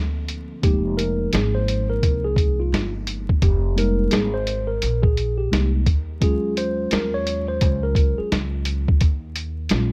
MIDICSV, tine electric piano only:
0, 0, Header, 1, 2, 480
1, 0, Start_track
1, 0, Tempo, 697674
1, 437, Time_signature, 4, 2, 24, 8
1, 6826, End_track
2, 0, Start_track
2, 0, Title_t, "Tine electric piano"
2, 0, Program_c, 0, 4
2, 0, Note_on_c, 0, 53, 60
2, 0, Note_on_c, 0, 58, 54
2, 0, Note_on_c, 0, 60, 55
2, 0, Note_on_c, 0, 69, 76
2, 397, Note_off_c, 0, 53, 0
2, 402, Note_off_c, 0, 58, 0
2, 409, Note_off_c, 0, 60, 0
2, 415, Note_off_c, 0, 69, 0
2, 427, Note_on_c, 0, 53, 54
2, 430, Note_on_c, 0, 56, 44
2, 435, Note_on_c, 0, 63, 54
2, 436, Note_on_c, 0, 58, 50
2, 438, Note_on_c, 0, 67, 83
2, 670, Note_on_c, 0, 70, 83
2, 684, Note_off_c, 0, 67, 0
2, 897, Note_off_c, 0, 70, 0
2, 918, Note_on_c, 0, 68, 81
2, 1064, Note_on_c, 0, 72, 84
2, 1070, Note_off_c, 0, 68, 0
2, 1304, Note_on_c, 0, 70, 83
2, 1311, Note_off_c, 0, 72, 0
2, 1544, Note_on_c, 0, 68, 84
2, 1552, Note_off_c, 0, 70, 0
2, 1787, Note_on_c, 0, 65, 64
2, 1792, Note_off_c, 0, 68, 0
2, 2009, Note_off_c, 0, 65, 0
2, 2324, Note_off_c, 0, 53, 0
2, 2326, Note_off_c, 0, 56, 0
2, 2328, Note_off_c, 0, 63, 0
2, 2329, Note_off_c, 0, 58, 0
2, 2363, Note_on_c, 0, 67, 76
2, 2585, Note_on_c, 0, 55, 55
2, 2588, Note_on_c, 0, 56, 48
2, 2591, Note_on_c, 0, 58, 49
2, 2595, Note_on_c, 0, 63, 55
2, 2603, Note_on_c, 0, 70, 93
2, 2607, Note_off_c, 0, 67, 0
2, 2832, Note_on_c, 0, 68, 81
2, 2847, Note_off_c, 0, 70, 0
2, 2931, Note_off_c, 0, 55, 0
2, 2933, Note_off_c, 0, 56, 0
2, 2934, Note_off_c, 0, 58, 0
2, 2936, Note_off_c, 0, 63, 0
2, 2985, Note_on_c, 0, 72, 88
2, 2987, Note_off_c, 0, 68, 0
2, 3215, Note_on_c, 0, 70, 81
2, 3232, Note_off_c, 0, 72, 0
2, 3456, Note_on_c, 0, 68, 76
2, 3467, Note_off_c, 0, 70, 0
2, 3698, Note_on_c, 0, 67, 67
2, 3708, Note_off_c, 0, 68, 0
2, 3793, Note_on_c, 0, 55, 43
2, 3795, Note_on_c, 0, 56, 39
2, 3799, Note_on_c, 0, 58, 39
2, 3800, Note_on_c, 0, 63, 43
2, 3924, Note_off_c, 0, 67, 0
2, 4011, Note_off_c, 0, 55, 0
2, 4012, Note_off_c, 0, 56, 0
2, 4014, Note_off_c, 0, 58, 0
2, 4015, Note_off_c, 0, 63, 0
2, 4270, Note_on_c, 0, 54, 56
2, 4271, Note_on_c, 0, 61, 52
2, 4273, Note_on_c, 0, 56, 57
2, 4277, Note_on_c, 0, 65, 68
2, 4289, Note_on_c, 0, 68, 92
2, 4507, Note_off_c, 0, 68, 0
2, 4524, Note_on_c, 0, 72, 97
2, 4764, Note_on_c, 0, 70, 88
2, 4767, Note_off_c, 0, 72, 0
2, 4913, Note_off_c, 0, 70, 0
2, 4913, Note_on_c, 0, 73, 97
2, 5132, Note_off_c, 0, 73, 0
2, 5148, Note_on_c, 0, 72, 86
2, 5389, Note_on_c, 0, 70, 82
2, 5394, Note_off_c, 0, 72, 0
2, 5630, Note_on_c, 0, 68, 67
2, 5634, Note_off_c, 0, 70, 0
2, 5737, Note_off_c, 0, 68, 0
2, 6166, Note_off_c, 0, 54, 0
2, 6166, Note_off_c, 0, 61, 0
2, 6168, Note_off_c, 0, 56, 0
2, 6169, Note_off_c, 0, 65, 0
2, 6673, Note_on_c, 0, 54, 51
2, 6675, Note_on_c, 0, 56, 52
2, 6681, Note_on_c, 0, 61, 49
2, 6682, Note_on_c, 0, 65, 57
2, 6826, Note_off_c, 0, 54, 0
2, 6826, Note_off_c, 0, 56, 0
2, 6826, Note_off_c, 0, 61, 0
2, 6826, Note_off_c, 0, 65, 0
2, 6826, End_track
0, 0, End_of_file